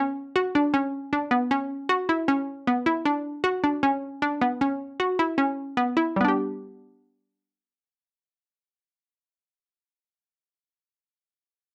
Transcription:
Already playing: C#4
0.36 F#4
0.55 D4
0.74 C#4
1.13 D4
1.31 B3
1.51 C#4
1.89 F#4
2.09 E4
2.28 C#4
2.67 B3
2.86 E4
3.05 D4
3.44 F#4
3.64 D4
3.83 C#4
4.22 D4
4.41 B3
4.61 C#4
5.00 F#4
5.19 E4
5.38 C#4
5.77 B3
5.97 E4
6.16 G3
6.21 B3 D4
6.28 G4

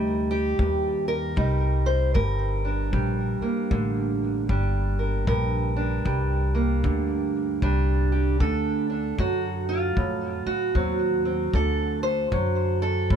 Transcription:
Already playing: D2 C3 G3 D#4 A#4
0.31 G4
0.59 D#2 G2, kick
1.08 A#4
1.36 C2 G3 D#4, kick
1.86 C5
2.14 G1 G2 A#4, kick
2.65 D4
2.93 A#1 G3, kick
3.41 A#3, muted upright bass stroke
3.71 A1 D3, kick
4.49 G1 G3 D4, kick
4.99 A#4
5.27 A#1 G2 A#4, kick
5.76 D4
6.05 C2 G3, kick
6.55 A#3
6.84 D2 D3, kick
7.62 C2 G3 D4, kick
8.12 G4
8.40 D2 D3 A4, kick
8.90 D4
9.18 F#2 F#3 F#4, kick
9.69 F4
9.96 F2 A2, kick
10.46 F#4, muted upright bass stroke
10.75 D#2 F#3 C4, kick
11.25 C4
11.53 D2 D3 A4, kick
12.03 C5
12.32 F#2 F#3, kick
12.82 A4
13.10 A2, kick

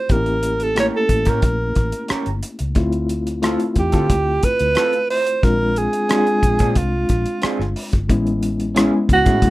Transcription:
Already playing: A3 C4 E4 F4 G4 C5
0.09 A1 A#3 C4 E4 G4 A#4, kick, closed hi-hat
0.17 C#4
0.26 closed hi-hat
0.43 closed hi-hat
0.60 A4, closed hi-hat
0.75 A3 A#3 C#4 E4 G4 A#4, cross-stick, closed hi-hat
0.80 C#5
0.96 A4
1.09 A1, kick, closed hi-hat
1.25 A2 C#4 G4 A#4, kick, cross-stick, closed hi-hat
1.29 A#4
1.42 A#1, kick, closed hi-hat
1.75 A1, kick, closed hi-hat
1.92 closed hi-hat
2.08 C#4 G4 A#4, muted fingered electric bass stroke, cross-stick, closed hi-hat
2.26 G1, closed hi-hat
2.43 closed hi-hat
2.59 C#2, closed hi-hat
2.75 D2 A3 C4 E4 F4, kick, closed hi-hat
2.92 closed hi-hat
3.09 closed hi-hat
3.27 closed hi-hat
3.42 A3 C4 E4 F4 A4, cross-stick, closed hi-hat
3.60 closed hi-hat
3.76 E2 G4, kick, closed hi-hat
3.92 D3 C4 F4 A4, kick, closed hi-hat
4.10 D2, kick, closed hi-hat
4.43 B4, kick, closed hi-hat
4.59 D2, closed hi-hat
4.75 C4 F4 A4, cross-stick, closed hi-hat
4.93 closed hi-hat
5.10 C5, open hi-hat
5.27 closed hi-hat
5.42 A#1 G#3 C4 D4 F4 A#4, kick, closed hi-hat
5.76 G#4, closed hi-hat
5.93 closed hi-hat
6.09 G#3 C4 D4 F4 G#4, cross-stick, closed hi-hat
6.27 closed hi-hat
6.43 A#1, kick, closed hi-hat
6.59 A#2 C4 D4 G#4, kick, closed hi-hat
6.75 C2 F4, kick, closed hi-hat
7.09 A#1, kick, closed hi-hat
7.26 closed hi-hat
7.42 C4 D4 G#4, muted fingered electric bass stroke, cross-stick, closed hi-hat
7.59 G1, cross-stick
7.76 open hi-hat
7.93 G1, kick, closed hi-hat
8.09 A1 G#3 B3 C#4 E4, kick, closed hi-hat
8.27 closed hi-hat
8.43 closed hi-hat
8.60 closed hi-hat
8.75 G#3 B3 C#4 E4 G#4, cross-stick, closed hi-hat
9.09 C#2, kick, closed hi-hat
9.13 F#4
9.25 A2 C#4 E4 G#4, kick, cross-stick, closed hi-hat
9.42 F#1 G#3 A#3 C#4 E4, kick, closed hi-hat

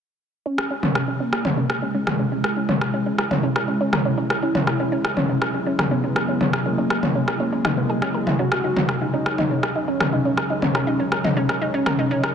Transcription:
0.46 C#3 G#3 C#4 E4
0.58 A#4, cross-stick
0.71 C#4
0.83 C#4, mid tom
0.95 A#4, cross-stick
1.08 C#4
1.20 A#3 C#4
1.33 A#4, cross-stick
1.45 C#4, mid tom
1.57 C#4
1.70 A#4, cross-stick
1.82 C#4
1.94 G#3 C#4
2.07 A#4, cross-stick, mid tom
2.19 C#4
2.32 C#4
2.44 A#4, cross-stick
2.57 C#4
2.69 G#3 C#4, mid tom
2.81 A#4, cross-stick
2.94 C#4
3.06 C#4
3.18 A#4, cross-stick
3.31 C#4, mid tom
3.43 G#3 C#4
3.56 A#4, cross-stick
3.68 C#4
3.81 C#4
3.93 A#4, cross-stick, mid tom
4.05 C#4
4.18 C#4
4.30 A#4, cross-stick
4.42 F#3 C#4 E4
4.55 C#4, mid tom
4.67 A#4, cross-stick
4.80 C#4
4.92 C#4
5.05 A#4, cross-stick
5.17 C#4, mid tom
5.29 C#4
5.42 A#4, cross-stick
5.54 C#4
5.66 C#4
5.79 A#4, cross-stick, mid tom
5.91 B3 C#4
6.04 C#4
6.16 A#4, cross-stick
6.29 C#4
6.41 C#4, mid tom
6.53 A#4, cross-stick
6.66 A#3 C#4
6.78 C#4
6.90 A#4, cross-stick
7.03 C#4, mid tom
7.15 C#4
7.28 A#4, cross-stick
7.40 A#3 C#4
7.53 C#4
7.65 D#4, cross-stick, mid tom
7.77 B3
7.90 G#4
8.02 C#4, cross-stick
8.14 A#4
8.27 E4, mid tom
8.39 F#3 C#4 D#4 F#4
8.52 A#4, cross-stick
8.64 D#4
8.77 C#4, mid tom
8.89 A#4, cross-stick
9.01 D#4
9.14 C#4 D#4
9.26 A#4, cross-stick
9.38 D#4, mid tom
9.51 C#4
9.63 A#4, cross-stick
9.76 D#4
9.88 C#4
10.00 A#4, cross-stick, mid tom
10.13 D#4
10.25 C#4
10.37 A#4, cross-stick
10.50 D#4
10.62 C#4, mid tom
10.75 A#4, cross-stick
10.87 D#4
11.00 C#4
11.12 A#4, cross-stick
11.24 D#4, mid tom
11.37 C#4
11.49 A#4, cross-stick
11.62 D#4
11.74 C#4
11.86 A#4, cross-stick, mid tom
11.99 D#4
12.11 C#4
12.24 A#4, cross-stick

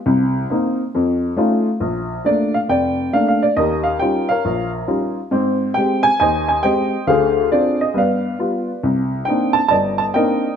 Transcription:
0.06 C2
0.50 A#3 C4 D#4
0.95 F2
1.36 A3 C#4 D#4 F4
1.80 A#1
2.25 A3 A#3 D4 D5
2.54 F5
2.69 F1 D5 G5
3.13 A3 A#3 D4 F5
3.28 F5
3.43 D5
3.57 D#2 G4 A#4 D#5
3.83 F5
3.99 G3 C#4 D#4 F4 G5
4.29 A#4 C#5 F5
4.45 A#1
4.88 G3 C#4 D#4 F4
5.31 G#2 C4
5.74 G#3 C4 G4 G5
6.03 G#5
6.20 D#2 C5 D#5 G#5
6.48 G#5
6.63 G#3 C4 G4 C5 D#5 G5
7.07 D2 D3 G#4 C5 F5
7.52 C4 D4 F4 D5
7.81 D#5
7.94 G2 B3 B4 D5 F5
8.39 G3 B3 F4
8.83 C2
9.25 A#3 C4 D4 D#4 G5
9.53 A5
9.68 G1 D5 D#5 A5
9.98 A5
10.14 A#3 C4 D4 D#4 A#4 D#5 G5

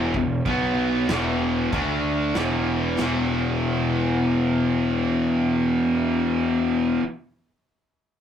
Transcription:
Already playing: E1 E2 B2 E3
0.14 E1 E2 B2, kick
0.46 B1 B2 F#3 B3, kick, china
1.08 E1 E2 B2 E3, snare, china
1.72 D2 D3 A3 D4, kick, china
2.34 E1 E2 B2 E3, snare, china
2.98 E1 E2 B2 E3, snare, crash

